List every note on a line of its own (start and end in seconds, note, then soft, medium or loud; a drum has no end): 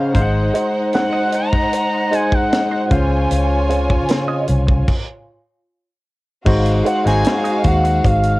0.00 0.17 C#3 medium
0.00 0.11 C#4 medium
0.00 0.17 C#4 medium
0.00 0.11 C5 medium
0.00 0.15 C5 medium
0.00 0.17 D#5 medium
0.00 0.11 F5 medium
0.00 0.13 F5 medium
0.00 0.17 F#5 medium
0.00 0.17 G#5 medium
0.00 0.17 A#5 medium
0.14 0.49 G#1 medium
0.14 1.63 G#3 medium
0.14 1.63 D#4 medium
0.14 2.87 D#4 medium
0.14 1.64 C5 medium
0.14 2.87 C5 medium
0.14 0.22 F5 medium
0.14 2.87 F#5 medium
0.14 kick loud
0.14 closed hi-hat medium
0.22 1.67 F#5 medium
0.54 0.71 G#3 medium
0.54 0.72 D#4 medium
0.54 0.72 F#4 medium
0.54 0.72 C5 medium
0.54 closed hi-hat medium
0.93 1.31 F#5 medium
0.93 muted clean electric guitar stroke soft
0.93 snare loud
0.93 closed hi-hat medium
1.13 1.32 G#3 medium
1.13 1.31 D#4 medium
1.13 1.31 F#4 medium
1.13 1.31 D#5 medium
1.32 2.15 A#5 loud
1.32 muted clean electric guitar stroke soft
1.32 closed hi-hat medium
1.53 muted clean electric guitar stroke soft
1.53 kick medium
1.73 muted clean electric guitar stroke soft
1.73 closed hi-hat medium
2.11 2.86 G#3 medium
2.11 2.25 G#3 medium
2.11 2.86 D#4 medium
2.11 2.26 D#4 medium
2.11 2.26 F#4 medium
2.11 2.87 C5 medium
2.11 2.26 C5 medium
2.11 2.87 F#5 medium
2.11 2.36 G#5 loud
2.11 closed hi-hat medium
2.32 2.92 F#5 medium
2.32 muted clean electric guitar stroke soft
2.32 kick loud
2.52 muted clean electric guitar stroke soft
2.52 snare loud
2.52 closed hi-hat medium
2.71 2.89 G#3 medium
2.71 2.89 D#4 medium
2.71 2.89 F#4 medium
2.71 2.89 C5 medium
2.90 3.25 C#2 loud
2.90 4.40 C#3 medium
2.90 4.40 C#4 medium
2.90 4.84 F4 medium
2.90 4.40 C5 medium
2.90 4.84 C#5 medium
2.90 4.40 F5 medium
2.90 4.84 G#5 medium
2.90 kick loud
2.90 closed hi-hat medium
3.10 muted clean electric guitar stroke soft
3.31 3.99 C#2 loud
3.31 closed hi-hat loud
3.69 3.87 C4 medium
3.69 3.87 F4 medium
3.69 3.87 G#4 medium
3.69 3.88 C5 medium
3.69 closed hi-hat medium
3.90 kick medium
4.08 muted clean electric guitar stroke soft
4.08 snare loud
4.08 closed hi-hat medium
4.28 4.46 C4 medium
4.28 4.46 F4 medium
4.28 4.46 G#4 medium
4.28 4.46 D#5 medium
4.47 4.83 C2 medium
4.47 muted clean electric guitar stroke soft
4.47 closed hi-hat medium
4.67 muted clean electric guitar stroke soft
4.67 kick medium
4.88 kick loud
4.88 crash medium
6.45 6.81 G#1 loud
6.45 7.02 G#3 medium
6.45 7.02 D#4 medium
6.45 8.39 F#4 medium
6.45 7.03 F#4 loud
6.45 7.02 C5 medium
6.45 8.39 F5 medium
6.45 kick loud
6.45 crash medium
6.66 closed hi-hat medium
6.85 7.03 G#3 medium
6.85 7.03 D#4 medium
6.85 7.03 F#4 medium
6.85 7.04 C5 medium
6.85 7.05 F#5 loud
6.85 closed hi-hat medium
7.04 7.23 G#1 medium
7.04 8.36 G#3 medium
7.04 8.36 D#4 medium
7.04 8.37 F#4 medium
7.04 8.36 C5 medium
7.04 7.62 G#5 loud
7.04 snare soft
7.04 closed hi-hat medium
7.24 muted clean electric guitar stroke soft
7.24 snare loud
7.24 closed hi-hat medium
7.44 7.63 G#3 medium
7.44 7.62 D#4 medium
7.44 7.62 F#4 medium
7.44 7.62 D#5 medium
7.44 closed hi-hat medium
7.64 7.99 D#2 medium
7.64 8.07 F#5 loud
7.64 muted clean electric guitar stroke soft
7.64 kick medium
7.64 closed hi-hat medium
7.84 muted clean electric guitar stroke soft
7.84 closed hi-hat medium
8.04 8.39 G#1 medium
8.04 8.39 F5 medium
8.04 muted clean electric guitar stroke soft
8.04 kick medium
8.04 closed hi-hat medium
8.23 closed hi-hat medium